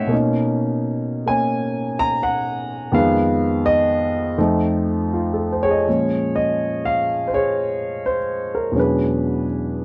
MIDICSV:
0, 0, Header, 1, 2, 480
1, 0, Start_track
1, 0, Tempo, 707547
1, 78, Time_signature, 4, 2, 24, 8
1, 2478, Tempo, 738916
1, 3918, Tempo, 722022
1, 6562, End_track
2, 0, Start_track
2, 0, Title_t, "Grand piano"
2, 0, Program_c, 0, 0
2, 0, Control_c, 0, 64, 127
2, 0, Note_on_c, 0, 55, 50
2, 0, Note_on_c, 0, 57, 46
2, 0, Note_on_c, 0, 59, 51
2, 0, Note_on_c, 0, 61, 43
2, 0, Note_on_c, 0, 63, 53
2, 0, Note_on_c, 0, 73, 86
2, 0, Note_on_c, 0, 75, 78
2, 0, Note_on_c, 0, 76, 86
2, 0, Note_on_c, 0, 78, 84
2, 0, Note_on_c, 0, 79, 96
2, 46, Note_on_c, 0, 47, 61
2, 58, Note_on_c, 0, 58, 58
2, 70, Note_off_c, 0, 57, 0
2, 73, Note_off_c, 0, 55, 0
2, 73, Note_off_c, 0, 61, 0
2, 73, Note_on_c, 0, 61, 55
2, 74, Note_off_c, 0, 63, 0
2, 77, Note_off_c, 0, 59, 0
2, 85, Note_on_c, 0, 63, 64
2, 87, Control_c, 0, 64, 0
2, 88, Note_off_c, 0, 73, 0
2, 90, Note_off_c, 0, 78, 0
2, 91, Note_off_c, 0, 75, 0
2, 91, Note_off_c, 0, 76, 0
2, 92, Note_off_c, 0, 79, 0
2, 211, Control_c, 0, 64, 127
2, 847, Note_off_c, 0, 58, 0
2, 857, Note_on_c, 0, 58, 47
2, 865, Note_on_c, 0, 80, 89
2, 867, Note_off_c, 0, 61, 0
2, 877, Note_on_c, 0, 61, 51
2, 1322, Note_off_c, 0, 80, 0
2, 1353, Note_on_c, 0, 82, 108
2, 1509, Note_off_c, 0, 82, 0
2, 1513, Note_on_c, 0, 78, 86
2, 1965, Note_off_c, 0, 78, 0
2, 1976, Note_off_c, 0, 47, 0
2, 1980, Note_on_c, 0, 41, 66
2, 1983, Note_on_c, 0, 51, 59
2, 1985, Note_off_c, 0, 58, 0
2, 1987, Note_on_c, 0, 56, 58
2, 1987, Note_on_c, 0, 59, 68
2, 1995, Note_off_c, 0, 61, 0
2, 1995, Note_off_c, 0, 63, 0
2, 1998, Note_on_c, 0, 77, 87
2, 2001, Control_c, 0, 64, 0
2, 2128, Control_c, 0, 64, 127
2, 2452, Note_off_c, 0, 77, 0
2, 2481, Note_on_c, 0, 75, 100
2, 2666, Note_off_c, 0, 75, 0
2, 2940, Note_off_c, 0, 41, 0
2, 2944, Note_off_c, 0, 51, 0
2, 2946, Note_off_c, 0, 56, 0
2, 2946, Note_off_c, 0, 59, 0
2, 2950, Note_on_c, 0, 41, 62
2, 2953, Note_on_c, 0, 53, 64
2, 2954, Note_on_c, 0, 63, 71
2, 2955, Note_on_c, 0, 57, 64
2, 2958, Control_c, 0, 64, 0
2, 3074, Control_c, 0, 64, 127
2, 3441, Note_on_c, 0, 65, 47
2, 3570, Note_on_c, 0, 69, 48
2, 3663, Note_off_c, 0, 65, 0
2, 3693, Note_on_c, 0, 72, 51
2, 3761, Note_on_c, 0, 73, 91
2, 3768, Note_off_c, 0, 69, 0
2, 3769, Note_on_c, 0, 68, 66
2, 3813, Note_on_c, 0, 75, 60
2, 3835, Note_off_c, 0, 72, 0
2, 3911, Note_off_c, 0, 53, 0
2, 3917, Note_on_c, 0, 46, 47
2, 3918, Note_off_c, 0, 41, 0
2, 3920, Note_off_c, 0, 63, 0
2, 3921, Note_off_c, 0, 57, 0
2, 3921, Note_on_c, 0, 53, 41
2, 3925, Control_c, 0, 64, 0
2, 3927, Note_on_c, 0, 61, 53
2, 3929, Note_on_c, 0, 56, 44
2, 3971, Note_off_c, 0, 75, 0
2, 4047, Control_c, 0, 64, 127
2, 4241, Note_on_c, 0, 75, 80
2, 4254, Note_off_c, 0, 73, 0
2, 4571, Note_off_c, 0, 75, 0
2, 4573, Note_on_c, 0, 77, 86
2, 4697, Note_off_c, 0, 68, 0
2, 4837, Note_off_c, 0, 77, 0
2, 4853, Note_on_c, 0, 72, 59
2, 4883, Note_off_c, 0, 72, 0
2, 4893, Note_on_c, 0, 68, 59
2, 4898, Note_on_c, 0, 73, 83
2, 5343, Note_off_c, 0, 73, 0
2, 5374, Note_on_c, 0, 72, 77
2, 5443, Note_off_c, 0, 72, 0
2, 5698, Note_on_c, 0, 70, 59
2, 5811, Note_on_c, 0, 40, 42
2, 5816, Note_off_c, 0, 68, 0
2, 5819, Note_on_c, 0, 47, 41
2, 5820, Note_on_c, 0, 54, 40
2, 5824, Note_off_c, 0, 56, 0
2, 5826, Note_off_c, 0, 61, 0
2, 5834, Note_on_c, 0, 56, 39
2, 5836, Note_off_c, 0, 46, 0
2, 5836, Note_on_c, 0, 61, 42
2, 5839, Note_off_c, 0, 53, 0
2, 5842, Note_on_c, 0, 62, 50
2, 5846, Control_c, 0, 64, 0
2, 5852, Note_off_c, 0, 70, 0
2, 5856, Note_on_c, 0, 68, 49
2, 5862, Note_on_c, 0, 71, 68
2, 5972, Control_c, 0, 64, 127
2, 6301, Note_off_c, 0, 71, 0
2, 6562, Note_off_c, 0, 40, 0
2, 6562, Note_off_c, 0, 47, 0
2, 6562, Note_off_c, 0, 54, 0
2, 6562, Note_off_c, 0, 56, 0
2, 6562, Note_off_c, 0, 61, 0
2, 6562, Note_off_c, 0, 62, 0
2, 6562, Note_off_c, 0, 68, 0
2, 6562, End_track
0, 0, End_of_file